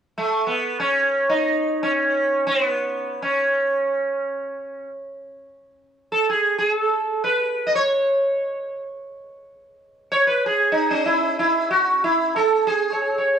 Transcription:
0.18 0.48 A3 medium
0.47 0.79 B3 medium
0.80 1.28 C#4 medium
1.29 1.82 D#4 medium
1.83 2.43 C#4 medium
2.47 2.67 C4 medium
2.67 3.22 B3 medium
3.22 4.86 C#4 medium
6.12 6.29 A4 medium
6.30 6.58 G#4 medium
6.58 6.70 G#4 medium
6.70 7.23 A4 medium
7.24 7.70 B4 medium
7.67 7.75 D#5 medium
7.75 8.80 C#5 medium
10.12 10.26 C#5 medium
10.27 10.45 B4 medium
10.46 10.92 G#4 medium
10.72 11.02 D#4 medium
10.91 12.41 C#4 medium
11.06 11.36 E4 medium
11.39 11.70 E4 medium
11.71 12.04 F#4 medium
12.04 12.36 E4 medium
12.36 12.66 A4 medium
12.67 13.39 G#4 medium
12.92 13.16 C#5 soft
13.18 13.39 C#5 soft

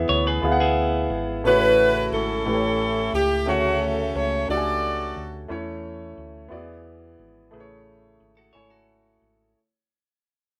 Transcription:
0.00 0.39 E3 medium
0.00 0.29 B3 medium
0.00 0.29 E4 medium
0.00 0.29 G#4 medium
0.00 0.30 E5 medium
0.09 0.40 D2 medium
0.09 0.25 C#5 medium
0.27 0.59 G#4 medium
0.27 0.59 B4 medium
0.42 1.06 D2 medium
0.42 1.30 B3 medium
0.42 1.31 E4 medium
0.42 1.31 G#4 medium
0.42 0.51 F5 medium
0.52 1.35 F#5 medium
0.60 1.41 E4 medium
0.60 1.41 G#4 medium
1.10 1.41 G#1 medium
1.44 2.08 A1 medium
1.44 2.42 C#3 soft
1.44 2.32 A3 medium
1.44 2.32 E4 medium
1.44 2.14 E4 medium
1.44 2.33 F#4 medium
1.44 2.43 F#4 medium
1.44 2.09 B4 medium
1.44 2.33 C#5 medium
2.12 2.43 G#1 medium
2.12 3.11 C#4 medium
2.12 3.11 E4 medium
2.12 3.14 A4 medium
2.45 3.10 A1 medium
2.45 3.43 A2 medium
2.45 3.33 A3 medium
2.45 3.33 E4 medium
2.45 3.34 G4 medium
2.45 2.53 B4 medium
2.54 3.38 C#5 medium
3.13 3.44 C#2 medium
3.13 3.48 G4 medium
3.46 4.11 D2 medium
3.46 4.44 C#3 medium
3.46 4.34 A3 medium
3.46 4.46 A3 medium
3.46 4.34 C#4 medium
3.46 4.45 C#4 medium
3.46 4.35 F#4 medium
3.46 3.82 F#4 medium
3.46 4.35 C#5 medium
3.83 4.16 A4 medium
4.15 4.46 C#2 medium
4.15 4.50 C#5 medium
4.48 5.12 C#2 medium
4.48 5.36 A3 medium
4.48 5.36 D4 medium
4.48 5.37 F#4 medium
4.48 5.47 F#4 medium
4.48 4.56 G4 medium
4.48 5.47 A4 medium
4.48 5.22 D5 medium
4.57 5.40 G#5 medium
5.17 5.47 D2 medium
5.48 6.14 E2 medium
5.48 6.47 E3 medium
5.48 6.37 A3 medium
5.48 6.37 C#4 medium
5.48 6.37 E4 medium
5.48 6.38 C#5 medium
6.17 6.49 D2 medium
6.49 7.15 E2 medium
6.49 7.48 E3 medium
6.49 7.38 B3 medium
6.49 7.38 E4 medium
6.49 6.58 F#4 soft
6.49 7.39 D5 medium
6.57 7.42 G#4 medium
7.19 7.50 G#1 medium
7.51 8.17 A1 medium
7.51 8.50 C#3 medium
7.51 8.39 A3 medium
7.51 8.40 E4 medium
7.51 8.40 G#4 medium
7.51 7.60 B4 medium
7.60 8.44 C#5 medium
8.20 8.51 G#1 medium
8.37 8.54 F#4 medium
8.37 8.52 A4 medium
8.53 9.18 G#1 medium
8.53 9.41 A3 medium
8.53 9.42 E4 medium
8.53 8.69 A4 medium
8.53 8.70 C#5 medium
8.53 9.43 C#5 medium
8.53 9.42 G#5 medium
8.70 9.52 F#4 medium
8.70 9.51 A4 medium
9.22 9.53 G#1 medium

